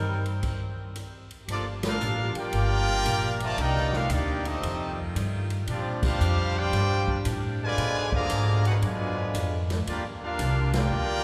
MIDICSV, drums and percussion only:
0, 0, Header, 1, 2, 480
1, 0, Start_track
1, 0, Key_signature, -2, "minor"
1, 0, Tempo, 524476
1, 1359, Time_signature, 4, 2, 24, 8
1, 10284, End_track
2, 0, Start_track
2, 0, Title_t, "Drums"
2, 234, Note_on_c, 9, 51, 45
2, 326, Note_off_c, 9, 51, 0
2, 391, Note_on_c, 9, 51, 52
2, 394, Note_on_c, 9, 49, 54
2, 395, Note_on_c, 9, 36, 70
2, 482, Note_off_c, 9, 51, 0
2, 485, Note_off_c, 9, 49, 0
2, 487, Note_off_c, 9, 36, 0
2, 874, Note_on_c, 9, 44, 46
2, 874, Note_on_c, 9, 51, 63
2, 966, Note_off_c, 9, 44, 0
2, 966, Note_off_c, 9, 51, 0
2, 1195, Note_on_c, 9, 51, 45
2, 1286, Note_off_c, 9, 51, 0
2, 1358, Note_on_c, 9, 51, 78
2, 1449, Note_off_c, 9, 51, 0
2, 1675, Note_on_c, 9, 51, 73
2, 1678, Note_on_c, 9, 38, 92
2, 1766, Note_off_c, 9, 51, 0
2, 1769, Note_off_c, 9, 38, 0
2, 1834, Note_on_c, 9, 44, 65
2, 1926, Note_off_c, 9, 44, 0
2, 2152, Note_on_c, 9, 51, 59
2, 2243, Note_off_c, 9, 51, 0
2, 2311, Note_on_c, 9, 51, 68
2, 2403, Note_off_c, 9, 51, 0
2, 2796, Note_on_c, 9, 44, 68
2, 2796, Note_on_c, 9, 51, 80
2, 2888, Note_off_c, 9, 44, 0
2, 2888, Note_off_c, 9, 51, 0
2, 3114, Note_on_c, 9, 51, 55
2, 3206, Note_off_c, 9, 51, 0
2, 3275, Note_on_c, 9, 51, 73
2, 3367, Note_off_c, 9, 51, 0
2, 3442, Note_on_c, 9, 38, 34
2, 3534, Note_off_c, 9, 38, 0
2, 3597, Note_on_c, 9, 38, 57
2, 3688, Note_off_c, 9, 38, 0
2, 3749, Note_on_c, 9, 44, 73
2, 3749, Note_on_c, 9, 51, 87
2, 3840, Note_off_c, 9, 44, 0
2, 3840, Note_off_c, 9, 51, 0
2, 4075, Note_on_c, 9, 51, 57
2, 4166, Note_off_c, 9, 51, 0
2, 4240, Note_on_c, 9, 51, 72
2, 4331, Note_off_c, 9, 51, 0
2, 4723, Note_on_c, 9, 44, 58
2, 4723, Note_on_c, 9, 51, 78
2, 4814, Note_off_c, 9, 44, 0
2, 4814, Note_off_c, 9, 51, 0
2, 5035, Note_on_c, 9, 51, 52
2, 5127, Note_off_c, 9, 51, 0
2, 5193, Note_on_c, 9, 51, 68
2, 5285, Note_off_c, 9, 51, 0
2, 5515, Note_on_c, 9, 49, 93
2, 5516, Note_on_c, 9, 36, 100
2, 5607, Note_off_c, 9, 49, 0
2, 5608, Note_off_c, 9, 36, 0
2, 5678, Note_on_c, 9, 44, 77
2, 5769, Note_off_c, 9, 44, 0
2, 6159, Note_on_c, 9, 51, 62
2, 6162, Note_on_c, 9, 38, 39
2, 6251, Note_off_c, 9, 51, 0
2, 6254, Note_off_c, 9, 38, 0
2, 6477, Note_on_c, 9, 36, 68
2, 6569, Note_off_c, 9, 36, 0
2, 6635, Note_on_c, 9, 44, 70
2, 6635, Note_on_c, 9, 51, 89
2, 6727, Note_off_c, 9, 44, 0
2, 6727, Note_off_c, 9, 51, 0
2, 7119, Note_on_c, 9, 51, 71
2, 7211, Note_off_c, 9, 51, 0
2, 7435, Note_on_c, 9, 36, 75
2, 7526, Note_off_c, 9, 36, 0
2, 7592, Note_on_c, 9, 44, 69
2, 7592, Note_on_c, 9, 51, 82
2, 7684, Note_off_c, 9, 44, 0
2, 7684, Note_off_c, 9, 51, 0
2, 7917, Note_on_c, 9, 51, 55
2, 8009, Note_off_c, 9, 51, 0
2, 8075, Note_on_c, 9, 51, 61
2, 8167, Note_off_c, 9, 51, 0
2, 8553, Note_on_c, 9, 44, 71
2, 8553, Note_on_c, 9, 51, 82
2, 8644, Note_off_c, 9, 44, 0
2, 8644, Note_off_c, 9, 51, 0
2, 8877, Note_on_c, 9, 51, 57
2, 8880, Note_on_c, 9, 38, 54
2, 8969, Note_off_c, 9, 51, 0
2, 8972, Note_off_c, 9, 38, 0
2, 9036, Note_on_c, 9, 51, 69
2, 9127, Note_off_c, 9, 51, 0
2, 9508, Note_on_c, 9, 44, 69
2, 9508, Note_on_c, 9, 51, 82
2, 9599, Note_off_c, 9, 44, 0
2, 9599, Note_off_c, 9, 51, 0
2, 9824, Note_on_c, 9, 51, 73
2, 9827, Note_on_c, 9, 38, 95
2, 9915, Note_off_c, 9, 51, 0
2, 9918, Note_off_c, 9, 38, 0
2, 10284, End_track
0, 0, End_of_file